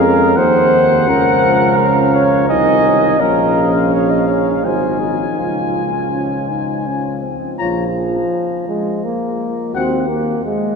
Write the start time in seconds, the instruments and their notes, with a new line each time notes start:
Already playing: bass trombone F2, trombone G#3, french horn C#4, trumpet F5
0.00 flugelhorn A#4
0.36 bass trombone D#2, trombone D#3, french horn C4, flugelhorn C5, trumpet F#5
1.07 bass trombone C#2, trombone F3, french horn C#4, flugelhorn A#4
1.76 trumpet F5
2.14 flugelhorn C#5
2.49 bass trombone C2, trombone D#3, french horn D#4, flugelhorn D#5, trumpet G#5
3.20 bass trombone A#1, trombone F3, french horn C#4, flugelhorn A#4, trumpet F5
3.73 flugelhorn C5
3.92 flugelhorn C#5
4.10 flugelhorn D#5
4.28 flugelhorn C#5
4.65 bass trombone G#1, trombone F#3, french horn D#4, flugelhorn C5, trumpet G#5
5.00 flugelhorn G#4
5.39 bass trombone C#2, trombone F3, flugelhorn F4
6.12 french horn C#4
6.49 french horn D#4
6.87 french horn C#4
7.23 french horn C4
7.58 bass trombone A#1, trombone F3, french horn F4, flugelhorn C#5, trumpet A#5
8.68 trombone G#3
9.04 trombone A#3
9.74 bass trombone D#2, trombone C4, french horn F#4, flugelhorn C5, trumpet F#5
10.09 trombone A#3
10.45 trombone G#3